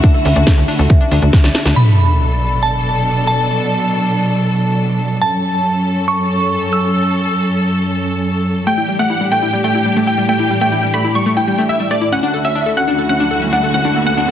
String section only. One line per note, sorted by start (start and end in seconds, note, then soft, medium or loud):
0.00 1.73 D3 medium
0.00 1.73 A3 medium
0.00 1.73 E4 medium
0.00 1.73 F#4 medium
1.76 5.18 B2 medium
1.76 8.63 F#3 medium
1.76 5.18 D4 medium
1.76 5.18 A4 medium
5.22 8.63 F#2 medium
5.22 8.63 C#4 medium
5.22 8.63 A4 medium
8.67 12.09 A2 medium
8.67 12.09 E3 medium
8.67 12.09 D4 medium
8.67 12.09 G4 medium
12.12 14.31 D2 medium
12.12 14.31 D3 medium
12.12 14.31 E4 medium
12.12 14.31 F#4 medium